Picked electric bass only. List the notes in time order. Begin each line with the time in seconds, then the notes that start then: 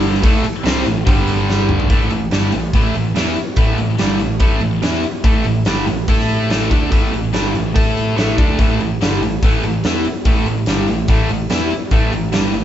Already playing: G1
0.23 A1
0.44 muted picked electric bass stroke
0.65 C2
0.86 A1
1.07 G1
1.90 A1
2.11 A1
2.32 G1
2.53 A1
2.73 A1
2.94 A1
3.15 E2
3.36 muted picked electric bass stroke
3.57 A1
3.78 A1
4.00 G1
4.20 A1
4.40 A1
4.61 A1
4.82 E2
5.03 muted picked electric bass stroke
5.24 A1
5.44 A1
5.66 G1
5.87 A1
6.08 A2
6.49 A1
6.71 D2
6.92 A1
7.12 A1
7.33 G1
7.55 A1
7.76 A2
8.17 A1
8.38 D2
8.59 A1
8.80 A1
9.01 G1
9.21 A1
9.43 A1
9.64 A1
9.84 E2
10.05 muted picked electric bass stroke
10.25 A1
10.46 A1
10.67 G1
10.88 A1
11.08 A1
11.30 A1
11.50 E2
11.70 muted picked electric bass stroke
11.91 A1
12.12 A1
12.33 G1
12.54 A1